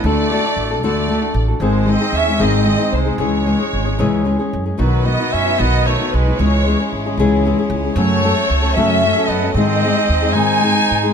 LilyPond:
<<
  \new Staff \with { instrumentName = "Violin section" } { \time 6/8 \key cis \minor \tempo 4. = 76 d''4. d''4 r8 | bis'8 dis''8 e''8 dis''4 bis'8 | cis''2~ cis''8 r8 | b'8 dis''8 e''8 dis''8 cis''8 b'8 |
cis''4 r2 | cis''4. e''4 dis''8 | dis''4. gis''4. | }
  \new Staff \with { instrumentName = "Violin section" } { \time 6/8 \key cis \minor << { r2. | r2. | r2. | dis''2. |
cis''2.~ | cis''2. | bis'2. | } \\ { r2. | r2. | r2. | <b fis'>2. |
<gis e'>2. | <a fis'>2. | <gis dis'>2. | } >> }
  \new Staff \with { instrumentName = "Nylon-string guitar" } { \time 6/8 \key cis \minor <d a d' fis' a'>8 <a d' fis' a'>16 <d' fis' a'>8 <d' fis' a'>16 <d a d' fis' a'>8 <a d' fis' a'>16 <d' fis' a'>8 <d' fis' a'>16 | <gis, dis gis bis dis' gis'>8 <gis bis dis' gis'>16 <gis bis dis' gis'>8 <gis bis dis' gis'>16 <gis, dis gis bis dis' gis'>8 <gis bis dis' gis'>16 <gis bis dis' gis'>8 <gis bis dis' gis'>16 | <cis e gis cis' gis'>8 <e gis cis' gis'>16 <gis cis' gis'>8 <gis cis' gis'>16 <cis e gis cis' gis'>8 <e gis cis' gis'>16 <gis cis' gis'>8 <gis cis' gis'>16 | <b, dis b dis' fis'>8 <dis b dis' fis'>16 <b dis' fis'>8 <b dis' fis'>16 <b, dis b dis' fis'>8 <dis b dis' fis'>16 <b dis' fis'>8 <b dis' fis'>16 |
<cis e gis cis' gis'>8 <e gis cis' gis'>16 <gis cis' gis'>8 <gis cis' gis'>16 <cis e gis cis' gis'>8 <e gis cis' gis'>16 <gis cis' gis'>8 <gis cis' gis'>16 | <fis, cis fis a cis' a'>8 <fis a cis' a'>16 <fis a cis' a'>8 <fis a cis' a'>16 <fis, cis fis a cis' a'>8 <fis a cis' a'>16 <fis a cis' a'>8 <fis a cis' a'>16 | <gis, dis gis bis dis' gis'>8 <gis bis dis' gis'>16 <gis bis dis' gis'>8 <gis bis dis' gis'>16 <gis, dis gis bis dis' gis'>8 <gis bis dis' gis'>16 <gis bis dis' gis'>8 <gis bis dis' gis'>16 | }
  \new Staff \with { instrumentName = "Trumpet" } { \time 6/8 \key cis \minor a4. a4 r8 | gis8 bis8 cis'8 bis4 gis8 | gis2~ gis8 r8 | fis8 b8 cis'8 b8 a8 gis8 |
gis4 r2 | a4. cis'4 b8 | bis4. dis'4. | }
  \new Staff \with { instrumentName = "Upright bass" } { \clef bass \time 6/8 \key cis \minor d,4 a,,8 d,4 a,,8 | gis,,4 dis,8 gis,,4 bis,,8 | cis,4 gis,,8 cis,4 fis,8 | b,,4 fis,8 b,,4 b,,8 |
cis,4 gis,,8 cis,4 cis,8 | fis,4 cis,8 fis,4 fis,8 | gis,4 dis,8 gis,4 gis,8 | }
>>